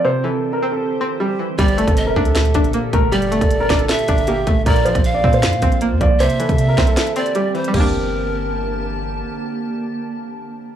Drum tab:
CC |----------------|----------------|----------------|----------------|
HH |----------------|xxxxx--xxxxxx-x-|xxxxx--xxxxxx-x-|xxxxx--xxxxxx-x-|
CP |----------------|--------x-------|------x-x-------|--------x-------|
SD |----------------|--------o-------|------o-o-------|--------o-------|
FT |----------------|----------------|----------------|----------------|
BD |----------------|o--o--o---o---o-|---o--o---o---o-|o--o--o---o---o-|

CC |----------------|x---------------|----------------|
HH |xxxxx--xxxxxx-xx|----------------|----------------|
CP |------x-x-------|----------------|----------------|
SD |------o-o-------|----------------|----------------|
FT |----------------|o---------------|----------------|
BD |---o--o---------|o---------------|----------------|